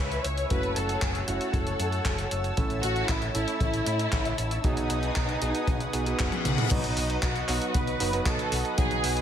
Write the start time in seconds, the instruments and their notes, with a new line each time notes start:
Already playing: electric grand piano G#3 C#4 E4 G#4, analog synth pad C#5 E5 G#5 E6
0.00 picked electric bass C#2, violin section B4
0.12 closed hi-hat
0.24 picked electric bass C#2, violin section C#5, closed hi-hat
0.37 closed hi-hat
0.50 picked electric bass F#1, electric grand piano A3 C#4 E4 F#4, violin section B4, analog synth pad F#5 A5 E6, kick, closed hi-hat
0.63 picked electric bass F#1, closed hi-hat
0.76 picked electric bass F#1, violin section A4, closed hi-hat
0.89 closed hi-hat
1.02 picked electric bass F#1, violin section G#4, kick, clap, closed hi-hat
1.15 closed hi-hat
1.28 picked electric bass F#1, electric grand piano A3 C#4 E4 F#4, violin section F#4, closed hi-hat
1.41 closed hi-hat
1.53 picked electric bass F#1, violin section A4, kick, closed hi-hat
1.67 closed hi-hat
1.80 picked electric bass F#2, closed hi-hat
1.92 closed hi-hat
2.05 picked electric bass F#1, kick, clap, closed hi-hat
2.18 closed hi-hat
2.31 picked electric bass F#1, closed hi-hat
2.44 closed hi-hat
2.57 picked electric bass A1, electric grand piano A3 C#4 E4 A4, analog synth pad E5, kick, closed hi-hat
2.70 picked electric bass A1, closed hi-hat
2.83 picked electric bass A1, violin section F#4, closed hi-hat
2.96 closed hi-hat
3.09 picked electric bass A1, violin section E4, kick, clap, closed hi-hat
3.22 closed hi-hat
3.35 picked electric bass A1, electric grand piano A3 C#4 E4 A4, violin section E4, closed hi-hat
3.48 closed hi-hat
3.60 picked electric bass A1, violin section E4, kick, closed hi-hat
3.74 closed hi-hat
3.86 picked electric bass A2, closed hi-hat
3.99 closed hi-hat
4.12 picked electric bass A1, kick, clap, closed hi-hat
4.25 closed hi-hat
4.38 picked electric bass A1, closed hi-hat
4.51 closed hi-hat
4.64 picked electric bass B1, electric grand piano B3 D#4 F#4 G#4, violin section D#4, analog synth pad B4 F#5 G#5 D#6, kick, closed hi-hat
4.77 picked electric bass B1, closed hi-hat
4.90 picked electric bass B1, closed hi-hat
5.03 closed hi-hat
5.16 picked electric bass B1, kick, clap, closed hi-hat
5.29 closed hi-hat
5.42 picked electric bass B1, electric grand piano B3 D#4 F#4 G#4, closed hi-hat
5.55 closed hi-hat
5.67 picked electric bass B1, kick, closed hi-hat, reverse cymbal
5.80 closed hi-hat
5.93 picked electric bass B1, electric grand piano B3 D#4 F#4 G#4, closed hi-hat
6.06 electric grand piano B3 D#4 F#4 G#4, closed hi-hat
6.19 picked electric bass F#1, kick, clap, closed hi-hat
6.32 closed hi-hat, high tom
6.45 picked electric bass B1, closed hi-hat, mid tom
6.58 closed hi-hat, mid tom
6.71 picked electric bass B1, electric grand piano F#3 B3 D#4 F#4, violin section D#4, analog synth pad B4 D#5 F#5 D#6, kick, closed hi-hat, crash
6.84 picked electric bass B1, closed hi-hat
6.97 picked electric bass B1, open hi-hat
7.10 closed hi-hat
7.23 picked electric bass B1, violin section F#4, kick, clap, closed hi-hat
7.36 closed hi-hat
7.48 picked electric bass B1, electric grand piano F#3 B3 D#4 F#4, clap, open hi-hat
7.62 closed hi-hat
7.74 picked electric bass B1, violin section B4, kick, closed hi-hat
7.87 closed hi-hat
8.00 picked electric bass F#1, electric grand piano F#3 B3 D#4 F#4, open hi-hat
8.13 electric grand piano F#3 B3 D#4 F#4, closed hi-hat
8.26 picked electric bass B1, violin section A4, kick, clap, closed hi-hat
8.39 closed hi-hat
8.52 picked electric bass B1, open hi-hat
8.65 closed hi-hat
8.78 picked electric bass B1, electric grand piano F#3 B3 D#4 F#4, violin section G#4, kick, closed hi-hat
8.91 picked electric bass B1, closed hi-hat
9.04 picked electric bass B1, open hi-hat
9.17 closed hi-hat